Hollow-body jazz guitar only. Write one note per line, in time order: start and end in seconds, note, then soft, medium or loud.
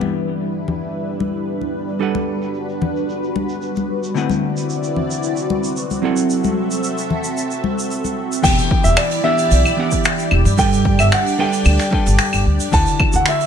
0.00 1.97 E3 medium
0.00 1.98 B3 medium
0.00 1.98 D4 medium
0.00 1.99 G4 medium
0.00 1.99 F#5 medium
1.99 4.12 G3 medium
1.99 4.12 D4 medium
1.99 4.12 A4 medium
1.99 4.13 B4 medium
1.99 4.13 F#5 medium
4.14 5.99 D3 medium
4.14 6.00 A3 medium
4.14 6.00 C4 medium
4.14 6.01 E4 medium
4.14 6.01 B4 medium
4.14 6.01 F#5 medium
6.02 8.40 F#3 medium
6.02 8.41 C4 medium
6.02 8.41 E4 medium
6.02 8.42 A4 medium
6.02 8.42 F#5 medium
8.42 9.21 E3 medium
8.42 9.21 B3 medium
8.42 9.21 D4 medium
8.42 9.22 G4 medium
8.42 9.22 G5 medium
9.23 9.75 E3 medium
9.23 9.75 B3 medium
9.23 9.75 D4 medium
9.23 9.76 G4 medium
9.23 9.76 F#5 medium
9.76 10.55 E3 medium
9.76 10.55 B3 medium
9.76 10.55 D4 medium
9.76 10.56 G4 medium
9.76 10.56 F#5 medium
10.57 11.35 G3 medium
10.57 11.36 D4 medium
10.57 11.36 A4 medium
10.57 11.37 B4 medium
10.57 11.37 G5 medium
11.38 11.89 G3 medium
11.38 11.90 D4 medium
11.38 11.90 A4 medium
11.38 11.90 B4 medium
11.38 11.90 G5 loud
11.90 12.69 G3 medium
11.90 12.69 D4 medium
11.90 12.70 A4 medium
11.90 12.70 B4 medium
11.90 12.71 G5 medium
12.71 13.46 D3 medium
12.71 13.46 D4 medium
12.71 13.46 E4 medium
12.71 13.46 B4 medium
12.71 13.46 F#5 medium